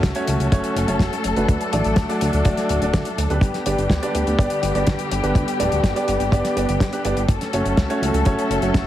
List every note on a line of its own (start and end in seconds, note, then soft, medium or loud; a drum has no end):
0.00 0.12 C#2 loud
0.00 3.38 F#3 medium
0.00 0.13 A3 medium
0.00 3.38 A3 medium
0.00 0.13 C#4 medium
0.00 1.47 C#4 medium
0.00 0.13 F#4 medium
0.00 3.38 A4 medium
0.00 0.13 C#5 medium
0.00 kick loud
0.00 snare loud
0.00 closed hi-hat medium
0.15 0.49 A3 medium
0.15 0.49 C#4 medium
0.15 0.49 F#4 medium
0.15 0.49 C#5 loud
0.15 closed hi-hat medium
0.27 0.37 C#2 medium
0.27 closed hi-hat loud
0.40 0.49 C#2 medium
0.40 closed hi-hat medium
0.52 0.61 F#1 loud
0.52 0.85 A3 medium
0.52 0.85 C#4 medium
0.52 0.85 F#4 medium
0.52 0.85 C#5 loud
0.52 kick loud
0.52 closed hi-hat medium
0.64 closed hi-hat medium
0.76 0.85 F#1 medium
0.76 closed hi-hat loud
0.88 0.97 F#1 medium
0.88 1.12 A3 medium
0.88 1.12 C#4 medium
0.88 1.12 F#4 medium
0.88 1.12 C#5 medium
0.88 closed hi-hat medium
0.99 1.09 F#1 loud
0.99 kick loud
0.99 snare loud
0.99 closed hi-hat medium
1.13 closed hi-hat medium
1.24 1.33 F#1 medium
1.24 closed hi-hat loud
1.36 1.46 F#1 medium
1.36 1.70 A3 medium
1.36 1.70 D4 medium
1.36 1.70 F#4 medium
1.36 1.70 B4 medium
1.36 closed hi-hat medium
1.49 1.58 D2 loud
1.49 3.40 D4 medium
1.49 kick loud
1.49 closed hi-hat medium
1.61 closed hi-hat medium
1.73 1.82 A1 medium
1.73 2.06 A3 medium
1.73 2.06 D4 medium
1.73 2.06 F#4 medium
1.73 2.06 D5 medium
1.73 closed hi-hat loud
1.84 1.94 A1 medium
1.84 closed hi-hat medium
1.96 2.06 D2 loud
1.96 kick loud
1.96 snare loud
1.96 closed hi-hat medium
2.09 2.42 A3 medium
2.09 2.42 D4 medium
2.09 2.42 F#4 medium
2.09 2.42 D5 loud
2.09 closed hi-hat medium
2.21 2.30 D2 medium
2.21 closed hi-hat loud
2.33 2.42 D2 medium
2.33 closed hi-hat medium
2.45 2.54 D1 loud
2.45 2.79 A3 medium
2.45 2.79 D4 medium
2.45 2.79 F#4 medium
2.45 2.79 D5 loud
2.45 kick loud
2.45 closed hi-hat medium
2.57 snare soft
2.57 closed hi-hat medium
2.69 2.79 D1 loud
2.69 closed hi-hat loud
2.82 2.91 D1 medium
2.82 3.06 A3 medium
2.82 3.06 D4 medium
2.82 3.06 F#4 medium
2.82 3.06 D5 medium
2.82 closed hi-hat medium
2.93 3.03 D2 loud
2.93 kick loud
2.93 snare loud
2.93 closed hi-hat medium
3.05 closed hi-hat medium
3.18 3.27 D2 medium
3.18 closed hi-hat loud
3.30 3.39 D2 medium
3.30 3.63 B3 medium
3.30 3.63 D4 medium
3.30 3.63 G4 medium
3.30 3.63 B4 medium
3.30 closed hi-hat medium
3.41 3.51 G1 loud
3.41 7.25 D3 medium
3.41 7.25 G3 medium
3.41 7.25 B3 medium
3.41 7.25 G4 medium
3.41 kick loud
3.41 closed hi-hat medium
3.54 snare soft
3.54 closed hi-hat soft
3.66 3.75 G1 medium
3.66 4.00 B3 medium
3.66 4.00 D4 medium
3.66 4.00 G4 medium
3.66 4.00 D5 medium
3.66 closed hi-hat loud
3.78 3.88 G1 medium
3.78 closed hi-hat soft
3.90 3.99 D2 loud
3.90 kick loud
3.90 snare loud
3.90 closed hi-hat medium
4.02 4.36 B3 medium
4.02 4.36 D4 medium
4.02 4.36 G4 medium
4.02 4.36 D5 loud
4.02 closed hi-hat medium
4.15 4.24 D2 medium
4.15 closed hi-hat loud
4.27 4.36 D2 medium
4.27 closed hi-hat medium
4.39 4.48 G1 loud
4.39 4.72 B3 loud
4.39 4.72 D4 medium
4.39 4.72 G4 medium
4.39 4.72 D5 loud
4.39 kick loud
4.39 closed hi-hat medium
4.50 closed hi-hat medium
4.63 4.72 G1 medium
4.63 closed hi-hat medium
4.75 4.84 G1 medium
4.75 4.99 B3 medium
4.75 4.99 D4 medium
4.75 4.99 G4 medium
4.75 4.99 D5 medium
4.75 closed hi-hat medium
4.87 4.96 G1 loud
4.87 kick loud
4.87 snare loud
4.87 closed hi-hat medium
4.99 closed hi-hat medium
5.11 5.21 G1 loud
5.11 closed hi-hat loud
5.23 5.33 G1 medium
5.23 5.57 B3 medium
5.23 5.57 D4 medium
5.23 5.57 G4 medium
5.23 5.57 B4 medium
5.23 closed hi-hat medium
5.35 5.45 D2 loud
5.35 kick loud
5.35 closed hi-hat medium
5.48 closed hi-hat medium
5.60 5.69 D1 medium
5.60 5.93 B3 medium
5.60 5.93 D4 medium
5.60 5.93 G4 medium
5.60 5.93 D5 medium
5.60 closed hi-hat loud
5.72 5.81 D1 medium
5.72 closed hi-hat medium
5.84 5.93 G1 loud
5.84 kick loud
5.84 snare loud
5.84 closed hi-hat medium
5.96 6.29 B3 medium
5.96 6.29 D4 medium
5.96 6.29 G4 medium
5.96 6.29 D5 loud
5.96 closed hi-hat medium
6.08 6.17 G1 medium
6.08 closed hi-hat medium
6.20 6.29 G1 medium
6.20 closed hi-hat medium
6.32 6.41 G1 loud
6.32 6.54 B3 loud
6.32 6.54 D4 medium
6.32 6.54 G4 medium
6.32 6.54 D5 loud
6.32 kick loud
6.32 closed hi-hat medium
6.44 snare soft
6.44 closed hi-hat medium
6.57 6.66 G1 medium
6.57 6.90 B3 medium
6.57 6.90 D4 medium
6.57 6.90 G4 medium
6.57 6.90 D5 medium
6.57 closed hi-hat medium
6.69 6.78 G1 medium
6.69 closed hi-hat medium
6.80 6.90 G1 loud
6.80 kick loud
6.80 snare loud
6.80 closed hi-hat medium
6.93 7.02 B3 medium
6.93 7.02 D4 medium
6.93 7.02 G4 medium
6.93 7.02 B4 medium
6.93 closed hi-hat medium
7.05 7.14 G1 loud
7.05 7.20 B3 medium
7.05 7.20 D4 medium
7.05 7.20 G4 medium
7.05 7.20 D5 loud
7.05 closed hi-hat medium
7.17 7.26 G1 medium
7.17 closed hi-hat soft
7.28 7.38 F#1 loud
7.28 8.87 F#3 medium
7.28 8.87 A3 medium
7.28 8.87 C#4 medium
7.28 8.87 A4 medium
7.28 kick loud
7.28 closed hi-hat medium
7.41 snare soft
7.41 closed hi-hat soft
7.53 7.62 F#1 medium
7.53 7.87 A3 medium
7.53 7.87 C#4 medium
7.53 7.87 F#4 medium
7.53 7.87 C#5 medium
7.53 closed hi-hat medium
7.65 7.75 F#1 medium
7.65 closed hi-hat medium
7.77 7.87 C#2 loud
7.77 kick medium
7.77 snare loud
7.77 closed hi-hat medium
7.90 8.23 A3 loud
7.90 8.23 C#4 medium
7.90 8.23 F#4 medium
7.90 8.23 C#5 loud
7.90 closed hi-hat soft
8.02 8.11 C#2 medium
8.02 closed hi-hat medium
8.14 8.23 C#2 medium
8.14 closed hi-hat medium
8.25 8.35 F#1 loud
8.25 8.59 A3 medium
8.25 8.59 C#4 medium
8.25 8.59 F#4 medium
8.25 8.59 C#5 loud
8.25 kick loud
8.25 closed hi-hat medium
8.39 closed hi-hat medium
8.50 8.59 F#1 medium
8.50 closed hi-hat medium
8.62 8.71 F#1 medium
8.62 8.87 A3 medium
8.62 8.87 C#4 medium
8.62 8.87 F#4 medium
8.62 8.87 C#5 medium
8.62 closed hi-hat soft
8.74 8.83 F#1 loud
8.74 kick loud
8.74 snare loud
8.74 closed hi-hat medium